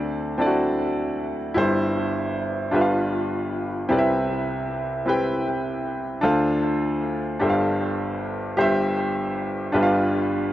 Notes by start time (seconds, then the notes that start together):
Already playing: D2 D3 C4 D4 F#4 A4 D5
0.38 C4 D4 E4 A4 D5
0.46 F#4
1.54 G1 G2 E4 G4 C5
2.71 G1 G2 D4 F4 G4 B4 E5
2.81 F5
3.89 C2 C3 C4 E4 G4 B4 D5
3.98 E5
5.06 C4 E4 G4 B4 G5
6.21 D2 D3 D4 F4 A4 C5 F5
7.39 G1 G2 D4 G4 A4 C5 E5
7.50 F5
8.57 G1 G2 G4 C5 E5
9.72 G1 G2 D4 F4 G4 B4 E5
9.83 F5